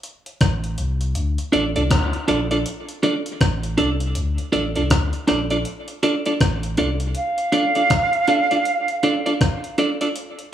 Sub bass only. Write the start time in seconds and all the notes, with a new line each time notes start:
0.41 A1
0.79 C2
1.17 D2
1.54 A1
1.77 C2
1.91 D2
2.30 A#1
3.41 A1
3.80 C2
4.17 D2
4.55 A1
4.78 C2
4.91 D2
5.30 A#1
6.41 A1
6.80 C2